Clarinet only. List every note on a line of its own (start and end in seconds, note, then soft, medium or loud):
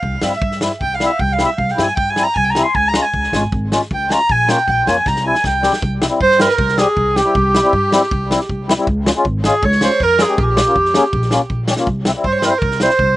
0.00 0.25 F5 medium
0.23 0.62 E5 medium
0.81 0.96 G5 medium
0.94 1.06 F5 medium
1.06 1.22 E5 medium
1.20 1.34 G5 medium
1.32 1.45 F5 medium
1.46 1.52 E5 medium
1.57 1.72 F5 medium
1.71 1.84 G5 medium
1.83 1.95 G#5 medium
1.96 2.11 G5 medium
2.10 2.25 G#5 medium
2.24 2.39 A#5 medium
2.37 2.52 G#5 loud
2.50 2.65 A#5 medium
2.63 2.77 C6 loud
2.75 2.90 G#5 loud
2.88 3.04 A#5 medium
3.02 3.40 G#5 medium
3.94 4.14 G5 loud
4.12 4.33 A#5 loud
4.31 4.52 G#5 loud
4.50 4.90 G5 loud
4.88 5.09 G#5 medium
5.08 5.26 A#5 medium
5.27 5.44 G#5 loud
5.46 5.81 G5 medium
6.22 6.39 C5 loud
6.41 6.80 A#4 loud
6.78 7.18 G#4 loud
7.17 8.68 G4 loud
9.45 9.67 G#4 loud
9.65 9.83 C#5 loud
9.84 10.05 C5 loud
10.03 10.23 A#4 loud
10.22 10.39 G#4 loud
10.42 11.48 G4 loud
12.27 12.46 C5 medium
12.45 12.52 A#4 loud
12.50 12.60 C5 medium
12.59 12.82 A#4 medium
12.83 13.16 C5 loud